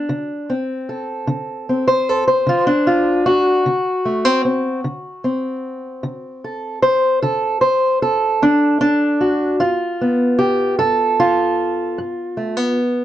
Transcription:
0.00 0.53 D4 medium
0.09 0.80 D3 medium
0.50 1.69 C4 soft
0.89 1.87 A4 soft
1.27 1.99 D3 medium
1.69 2.66 C4 soft
1.88 2.09 C5 loud
2.09 2.27 A4 medium
2.28 3.25 C5 medium
2.47 3.18 D3 medium
2.47 2.68 F4 medium
2.67 3.66 D4 loud
2.87 3.26 F4 medium
3.26 6.43 F#4 medium
3.66 4.37 D3 medium
4.05 4.25 A3 soft
4.25 4.44 C4 soft
4.45 4.80 C4 soft
4.84 5.56 D3 medium
5.24 8.41 C4 soft
6.03 6.75 D3 medium
6.44 6.82 A4 soft
6.82 7.22 C5 medium
7.22 7.94 D3 medium
7.22 7.61 A4 medium
7.61 8.01 C5 medium
8.02 9.21 A4 medium
8.42 9.13 D3 medium
8.42 8.80 D4 medium
8.81 9.60 D4 loud
9.21 9.55 F#4 soft
9.60 10.32 G2 medium
9.60 11.19 F4 medium
10.01 12.37 B3 soft
10.39 10.78 G4 medium
10.79 11.51 G2 medium
10.79 11.98 A4 medium
11.20 12.78 F4 medium
11.98 12.69 G2 medium
12.37 12.57 A3 soft
12.57 13.05 B3 soft

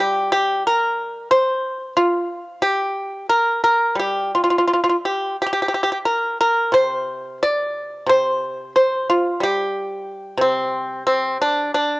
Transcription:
0.00 1.95 G3 medium
0.00 0.30 G4 medium
0.32 0.63 G4 medium
0.67 1.28 A#4 medium
1.31 1.92 C5 medium
1.97 2.59 F4 medium
2.62 3.26 G4 medium
3.29 3.61 A#4 medium
3.64 3.95 A#4 medium
3.95 6.04 G3 soft
3.99 4.31 G4 medium
4.35 4.41 F4 medium
4.44 4.49 F4 soft
4.50 4.56 F4 medium
4.58 4.64 F4 medium
4.68 4.72 F4 medium
4.74 4.80 F4 soft
4.84 4.88 F4 medium
4.90 4.95 F4 soft
5.05 5.36 G4 medium
5.42 5.45 G4 medium
5.47 5.52 G4 medium
5.53 5.59 G4 medium
5.62 5.67 G4 soft
5.68 5.73 G4 medium
5.74 5.81 G4 medium
5.83 5.90 G4 medium
5.92 5.98 G4 soft
6.05 6.37 A#4 medium
6.41 6.72 A#4 medium
6.72 8.05 C3 soft
6.72 7.37 C5 medium
7.43 8.05 D5 medium
8.06 10.06 C3 medium
8.06 8.72 C5 medium
8.76 9.07 C5 medium
9.10 9.40 F4 medium
9.40 11.38 G3 soft
9.40 10.37 G4 medium
10.37 12.00 C3 medium
10.37 11.02 C4 medium
11.07 11.37 C4 medium
11.42 11.70 D4 medium
11.74 12.00 D4 medium

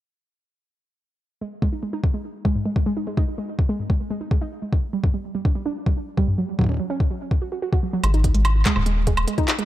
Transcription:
1.41 1.45 G#3 medium
1.62 1.68 G#3 medium
1.62 kick medium
1.73 1.82 D#4 medium
1.83 1.89 G#3 medium
1.93 1.99 D#4 loud
2.04 kick loud
2.14 2.20 G#3 medium
2.45 2.54 G#3 loud
2.45 kick medium
2.55 2.61 G#2 medium
2.66 2.69 G#3 medium
2.76 kick medium
2.86 2.92 G#3 medium
2.97 3.06 D#4 medium
3.07 3.13 G#3 medium
3.17 3.23 D#4 loud
3.17 kick loud
3.38 3.44 G#3 medium
3.59 kick loud
3.69 3.78 G#3 loud
3.79 3.85 G#2 medium
3.90 3.93 G#3 medium
3.90 kick loud
4.10 4.16 G#3 medium
4.21 4.30 D#4 medium
4.31 4.37 G#3 medium
4.31 kick loud
4.41 4.48 D#4 medium
4.62 4.68 G#3 medium
4.73 kick loud
4.93 5.02 G3 loud
5.04 5.10 G2 medium
5.04 kick loud
5.14 5.18 G3 medium
5.35 5.41 G3 medium
5.45 5.54 D4 medium
5.45 kick loud
5.55 5.61 G3 medium
5.66 5.72 D4 loud
5.86 5.92 G3 medium
5.86 kick loud
6.17 6.26 G3 loud
6.17 kick loud
6.28 6.34 G2 medium
6.38 6.42 F#3 medium
6.59 6.65 F#3 loud
6.59 kick loud
6.61 kick medium
6.64 kick medium
6.67 kick medium
6.69 6.78 C#4 medium
6.69 kick soft
6.72 kick soft
6.74 kick soft
6.77 6.86 F#3 medium
6.77 kick soft
6.90 6.96 C#4 loud
7.00 kick loud
7.11 7.17 F#3 medium
7.31 kick loud
7.42 7.48 F#4 medium
7.52 7.58 F#4 medium
7.62 7.68 F#4 loud
7.73 7.79 F#4 medium
7.73 kick loud
7.83 7.92 F#3 medium
7.93 7.99 F#3 loud
8.04 8.63 G#1 medium
8.04 8.10 G#3 medium
8.04 closed hi-hat medium
8.04 high woodblock soft
8.14 8.20 D#4 loud
8.14 closed hi-hat soft
8.24 8.33 D#4 medium
8.24 kick medium
8.24 closed hi-hat medium
8.35 8.41 G#3 medium
8.35 closed hi-hat soft
8.45 closed hi-hat medium
8.45 high woodblock medium
8.65 8.75 G#3 medium
8.65 kick loud
8.65 clap loud
8.65 closed hi-hat medium
8.76 9.25 D#1 medium
8.76 8.82 G#2 medium
8.76 high woodblock soft
8.86 8.90 G#3 medium
8.86 closed hi-hat medium
9.07 9.13 G#3 loud
9.07 kick medium
9.07 closed hi-hat medium
9.17 closed hi-hat soft
9.17 high woodblock medium
9.28 9.34 G#3 medium
9.28 closed hi-hat medium
9.38 9.44 D#4 medium
9.38 kick medium
9.38 closed hi-hat soft
9.48 9.57 D#4 medium
9.48 clap loud
9.48 closed hi-hat medium
9.59 9.65 G#3 medium
9.59 closed hi-hat soft

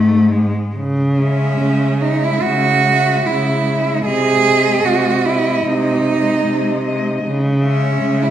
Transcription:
0.00 0.50 G#2 medium
0.00 0.32 A3 medium
0.00 0.31 C4 medium
0.00 0.31 D#4 medium
0.31 0.75 G#3 medium
0.76 1.50 C#3 medium
1.17 2.00 G#3 medium
1.17 2.03 C#4 medium
1.17 1.99 E5 soft
1.60 2.33 C#3 medium
2.01 2.83 G#3 medium
2.01 2.25 D#4 medium
2.01 2.83 E5 soft
2.24 2.44 E4 medium
2.43 3.16 C#3 medium
2.43 3.28 F#4 medium
2.85 3.65 G#3 soft
2.85 3.65 E5 medium
3.27 3.97 C#3 medium
3.27 4.04 E4 medium
3.67 4.05 G#3 soft
3.67 4.05 E5 soft
4.05 4.75 C3 medium
4.05 4.44 G#3 soft
4.05 4.86 G#4 loud
4.05 4.44 D#5 soft
4.44 5.23 G#3 medium
4.44 5.23 D#5 medium
4.84 5.55 C3 medium
4.84 5.27 F#4 medium
5.25 6.04 G#3 medium
5.25 5.67 E4 medium
5.25 6.04 D#5 soft
5.65 6.35 C3 medium
5.65 7.24 D#4 medium
6.05 6.83 G#3 medium
6.05 6.83 D#5 soft
6.45 7.15 C3 medium
6.85 7.23 G#3 medium
6.85 7.23 D#5 soft
7.24 7.92 C#3 medium
7.63 8.30 G#3 medium
7.63 8.24 C#4 medium
7.63 8.30 E5 medium
8.02 8.30 C#3 medium
8.23 8.30 E4 medium

